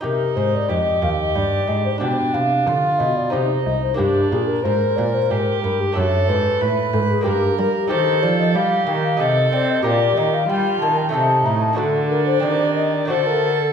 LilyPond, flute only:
\new Staff \with { instrumentName = "Flute" } { \time 3/4 \key c \minor \tempo 4 = 92 bes'8 c''16 d''16 ees''8 f''16 ees''16 d''8 ees''16 c''16 | g''8 f''4 ees''16 d''16 c''8 ees''16 c''16 | g'8 aes'16 bes'16 c''8 d''16 c''16 bes'8 bes'16 g'16 | des''8 b'4 a'16 aes'16 g'8 bes'16 g'16 |
\key g \minor c''8 d''16 ees''16 f''8 g''16 f''16 ees''8 d''16 ees''16 | d''8 ees''16 f''16 g''8 a''16 g''16 a''8 bes''16 a''16 | a'8 bes'16 c''16 d''8 ees''16 d''16 c''16 bes'8 a'16 | }